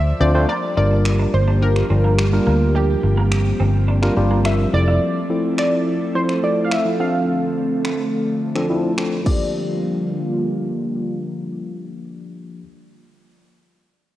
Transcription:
0.00 0.11 D2 medium
0.00 0.45 F3 medium
0.00 0.45 C5 medium
0.00 0.46 D5 medium
0.00 0.21 E5 medium
0.00 0.45 A5 loud
0.20 0.44 D2 medium
0.20 0.31 A3 medium
0.20 0.31 C4 medium
0.20 0.31 D4 medium
0.20 0.31 F4 medium
0.20 0.31 C5 loud
0.20 0.47 D5 medium
0.34 0.45 A3 loud
0.34 0.45 C4 medium
0.34 0.46 D4 medium
0.34 0.46 F4 medium
0.34 0.46 C5 loud
0.48 9.22 F3 medium
0.48 4.69 G3 medium
0.48 4.69 A#3 medium
0.48 0.59 A#3 medium
0.48 2.73 D4 medium
0.48 4.69 G4 medium
0.48 0.76 D5 medium
0.77 1.25 G1 medium
0.77 1.42 G3 medium
0.77 0.88 C4 medium
0.77 1.42 D4 medium
0.77 1.42 F4 medium
0.77 1.42 A#4 medium
0.77 1.35 D5 loud
0.91 muted clean electric guitar stroke soft
1.05 finger snap loud
1.19 1.30 D4 medium
1.34 1.81 G1 medium
1.34 1.63 C5 medium
1.34 muted clean electric guitar stroke soft
1.48 1.58 D4 medium
1.62 1.84 G3 medium
1.62 1.84 D4 medium
1.62 1.84 F4 medium
1.62 1.84 G4 medium
1.62 2.79 A#4 medium
1.62 muted clean electric guitar stroke soft
1.76 finger snap medium
1.90 2.38 G1 medium
1.90 2.23 G3 medium
1.90 2.01 C4 medium
1.90 2.23 D4 medium
1.90 2.23 F4 medium
1.90 2.23 A#4 medium
2.04 2.15 A#3 medium
2.18 finger snap loud
2.33 3.20 G3 medium
2.33 3.20 D4 medium
2.33 3.20 F4 medium
2.33 3.20 A#4 loud
2.47 2.94 D2 medium
2.47 2.57 A#3 medium
2.75 2.86 G3 medium
2.75 9.22 C4 medium
2.75 4.50 G4 medium
3.03 3.51 G1 medium
3.03 muted clean electric guitar stroke soft
3.17 3.28 A#3 medium
3.32 finger snap loud
3.60 4.08 G1 medium
3.60 3.71 C4 medium
3.88 3.99 D4 medium
4.02 4.13 G3 loud
4.02 4.13 D4 medium
4.02 4.13 F4 medium
4.02 4.13 A#4 loud
4.02 finger snap medium
4.16 4.64 G1 medium
4.16 4.38 G3 medium
4.16 4.38 D4 medium
4.16 4.38 F4 medium
4.16 4.39 G4 loud
4.16 muted clean electric guitar stroke soft
4.31 4.41 A#3 medium
4.45 4.67 G3 medium
4.45 4.67 D4 medium
4.45 4.56 D4 medium
4.45 4.67 F4 medium
4.45 4.67 A#4 medium
4.45 4.74 E5 loud
4.45 finger snap loud
4.73 4.97 F1 medium
4.73 5.18 F3 medium
4.73 6.97 A3 medium
4.73 5.18 C4 medium
4.73 5.19 E4 medium
4.73 6.97 E4 medium
4.73 9.22 A4 medium
4.73 5.19 A4 medium
4.73 5.54 D5 loud
4.73 muted clean electric guitar stroke soft
4.88 4.98 E4 medium
5.30 5.95 F3 medium
5.30 5.95 C4 medium
5.30 5.95 E4 medium
5.30 5.95 A4 medium
5.58 6.17 D5 loud
5.58 finger snap loud
6.15 6.36 F3 medium
6.15 6.37 C4 medium
6.15 6.37 E4 medium
6.15 6.37 A4 medium
6.15 6.44 C5 loud
6.29 finger snap medium
6.43 6.76 F3 medium
6.43 6.76 C4 medium
6.43 6.76 E4 medium
6.43 6.76 A4 medium
6.43 6.65 D5 loud
6.65 6.71 F5 medium
6.72 7.01 E5 medium
6.72 finger snap loud
6.85 6.98 F3 medium
6.85 6.98 C4 medium
6.85 7.00 E4 medium
6.85 6.99 A4 medium
6.99 9.24 D3 medium
6.99 7.90 F3 medium
6.99 9.24 A3 medium
6.99 7.90 C4 medium
6.99 7.90 D4 medium
6.99 7.90 A4 medium
6.99 8.94 F5 loud
7.85 finger snap loud
8.55 8.66 F3 medium
8.55 8.66 C4 medium
8.55 8.66 D4 medium
8.55 8.66 A4 loud
8.55 finger snap medium
8.70 8.91 F3 medium
8.70 8.91 C4 medium
8.70 8.91 D4 medium
8.70 8.92 E4 medium
8.98 9.19 F3 medium
8.98 9.20 C4 medium
8.98 9.20 D4 medium
8.98 9.20 A4 medium
8.98 finger snap loud
9.24 12.57 D3 medium
9.24 12.61 F3 medium
9.24 12.57 F3 medium
9.24 12.57 G3 medium
9.24 12.62 A#3 medium
9.24 12.57 A#3 medium
9.24 12.63 D4 medium
9.24 12.57 F4 medium
9.24 12.65 G4 medium
9.24 12.62 D5 medium
9.24 kick medium
9.24 crash medium

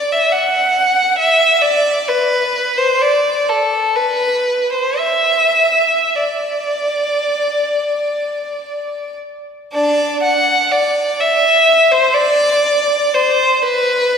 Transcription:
0.00 0.11 D5 medium
0.12 0.34 E5 medium
0.32 1.20 F#5 medium
1.19 1.63 E5 medium
1.62 2.08 D5 medium
2.09 2.78 B4 medium
2.78 3.01 C5 medium
3.02 3.49 D5 medium
3.49 3.96 A4 medium
3.96 4.73 B4 medium
4.73 5.00 C5 medium
4.97 6.14 E5 medium
6.15 9.15 D5 soft
9.73 10.19 D4 soft
9.73 10.20 D5 medium
10.24 10.72 F#5 medium
10.72 11.19 D5 medium
11.21 11.91 E5 medium
11.91 12.14 C5 medium
12.14 13.14 D5 medium
13.14 13.63 C5 medium
13.62 14.18 B4 medium

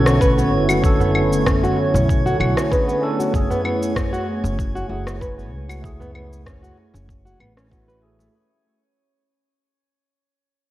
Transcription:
0.00 0.52 B1 medium
0.00 0.84 D3 medium
0.00 8.34 F#3 medium
0.00 8.34 A3 medium
0.00 8.33 B3 medium
0.00 0.82 C#4 medium
0.00 8.35 C#4 medium
0.00 8.34 E4 medium
0.00 0.20 F#4 medium
0.00 0.86 A4 medium
0.00 8.33 C#5 medium
0.00 8.35 C#5 medium
0.07 cross-stick medium
0.07 shaker medium
0.21 0.37 B4 medium
0.21 kick loud
0.21 shaker soft
0.37 0.52 B3 loud
0.37 darbuka ka soft
0.37 shaker soft
0.52 1.70 F#1 medium
0.69 0.99 F#4 medium
0.69 claves medium
0.69 shaker medium
0.82 2.53 D3 medium
0.82 2.52 C#4 medium
0.82 2.54 A4 loud
0.82 kick loud
0.82 shaker medium
1.00 1.13 B3 medium
1.00 darbuka dum medium
1.00 shaker soft
1.15 1.45 B3 medium
1.15 claves medium
1.33 shaker medium
1.46 1.61 C#4 medium
1.46 kick loud
1.46 cross-stick medium
1.46 darbuka dum medium
1.46 shaker medium
1.63 1.77 F#4 medium
1.63 darbuka ka soft
1.63 darbuka tek medium
1.63 shaker soft
1.76 darbuka ka medium
1.94 2.33 B1 medium
1.94 2.24 C#4 medium
1.94 darbuka tek medium
1.94 darbuka dum medium
1.94 shaker medium
2.09 kick loud
2.09 shaker medium
2.26 2.38 F#4 loud
2.26 shaker soft
2.40 2.51 B1 medium
2.40 2.70 F#4 medium
2.40 claves medium
2.57 cross-stick medium
2.57 darbuka tek medium
2.57 shaker medium
2.70 2.98 C#4 medium
2.70 2.99 D4 medium
2.70 2.99 G#4 medium
2.70 2.87 B4 medium
2.70 kick loud
2.70 shaker soft
2.88 3.02 B3 medium
2.88 shaker soft
3.01 3.29 C#4 medium
3.01 3.30 D4 medium
3.01 3.31 A4 medium
3.01 darbuka ka medium
3.19 3.34 F#4 medium
3.19 shaker medium
3.32 3.45 F#1 medium
3.32 4.85 A3 medium
3.32 4.86 E4 medium
3.32 kick loud
3.32 shaker medium
3.36 4.87 G#4 medium
3.50 3.63 B3 medium
3.50 darbuka dum loud
3.50 shaker soft
3.65 3.95 B3 medium
3.65 claves medium
3.83 shaker medium
3.96 4.11 C#4 medium
3.96 kick loud
3.96 cross-stick medium
3.96 darbuka dum medium
3.96 shaker medium
4.13 4.27 F#4 medium
4.13 shaker soft
4.44 4.83 F#1 medium
4.44 4.73 C#4 medium
4.44 darbuka tek medium
4.44 darbuka dum medium
4.44 shaker medium
4.59 kick loud
4.59 shaker medium
4.75 4.88 F#4 medium
4.75 darbuka ka soft
4.75 shaker soft
4.88 5.52 F#1 medium
4.88 5.79 A3 medium
4.88 5.80 E4 medium
4.88 5.20 F#4 medium
4.92 5.81 G#4 medium
5.07 cross-stick medium
5.07 shaker medium
5.21 5.37 B4 medium
5.21 kick loud
5.21 shaker soft
5.38 5.52 B3 loud
5.38 darbuka ka soft
5.38 shaker soft
5.52 6.70 C#2 medium
5.69 5.99 F#4 medium
5.69 claves medium
5.69 shaker medium
5.81 7.51 A3 medium
5.81 7.52 E4 medium
5.81 kick loud
5.81 shaker medium
5.86 7.54 G#4 medium
6.00 6.13 B3 medium
6.00 darbuka dum medium
6.00 shaker soft
6.15 6.45 B3 medium
6.15 darbuka ka soft
6.15 claves medium
6.33 shaker medium
6.46 6.61 C#4 medium
6.46 kick medium
6.46 cross-stick medium
6.46 darbuka dum medium
6.46 shaker medium
6.62 6.76 F#4 medium
6.62 darbuka ka soft
6.62 darbuka tek soft
6.62 shaker soft
6.77 darbuka ka medium
6.94 7.33 F#1 medium
6.94 7.24 C#4 medium
6.94 darbuka tek medium
6.94 darbuka dum medium
6.94 shaker medium
7.09 kick loud
7.09 shaker soft
7.25 7.38 F#4 medium
7.25 shaker soft
7.40 8.26 A1 medium
7.40 7.55 B3 medium
7.40 claves medium
7.57 7.70 C#4 medium
7.57 cross-stick medium
7.57 darbuka tek soft
7.57 shaker medium
7.70 7.98 A3 medium
7.70 7.86 B3 medium
7.70 7.99 E4 medium
7.70 7.99 F#4 medium
7.70 kick loud
7.70 shaker soft
7.88 8.01 B4 medium
7.88 shaker soft
8.01 8.30 A3 medium
8.01 8.30 E4 medium
8.01 8.31 G#4 medium
8.01 darbuka ka medium
8.19 8.27 A3 medium
8.19 darbuka tek medium
8.19 shaker medium

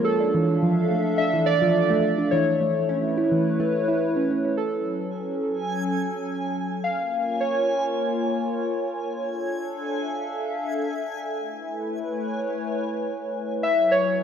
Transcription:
0.00 0.97 F4 medium
0.00 0.97 C#5 medium
0.04 2.32 D4 medium
0.04 1.22 A4 medium
0.20 0.33 D4 medium
0.27 3.23 A4 medium
0.27 2.32 F5 medium
0.33 0.42 E3 medium
0.33 3.23 E5 medium
0.63 0.75 F3 medium
0.91 0.98 A3 medium
1.18 1.32 D4 medium
1.18 1.48 E5 loud
1.33 1.41 E3 medium
1.46 2.34 D5 loud
1.62 1.74 F3 loud
1.90 1.97 A3 loud
2.18 2.31 D4 medium
2.31 2.40 E3 medium
2.31 4.59 A3 medium
2.31 3.97 C#5 medium
2.61 2.73 A3 medium
2.61 5.49 E4 medium
2.89 2.96 C#4 medium
2.89 5.49 B4 medium
2.97 5.46 C#5 medium
3.17 3.30 E4 medium
3.32 3.39 E3 medium
3.60 3.72 A3 loud
3.88 4.02 E4 medium
4.16 4.29 C#4 medium
4.31 4.44 C#4 medium
4.45 4.57 C#4 medium
4.57 6.85 F#3 medium
4.57 6.91 A4 medium
4.57 12.51 G#5 medium
4.68 7.76 C#4 medium
4.99 6.85 A4 medium
5.20 7.76 G#5 medium
6.84 9.12 A#3 medium
6.84 7.43 F5 loud
6.94 9.12 A#4 medium
7.07 10.02 F4 medium
7.07 10.02 C#5 medium
7.40 8.79 C#5 medium
9.12 11.38 D4 medium
9.17 12.29 A4 medium
9.79 12.29 E5 medium
10.02 11.38 F5 medium
11.38 13.64 A3 medium
11.47 14.23 E4 medium
11.51 14.23 B4 medium
11.83 14.23 C#5 medium
13.63 14.23 F#3 medium
13.63 13.93 E5 loud
13.89 14.23 C#5 loud
13.89 14.23 G#5 medium
13.94 14.23 C#4 medium
14.12 14.23 A4 medium

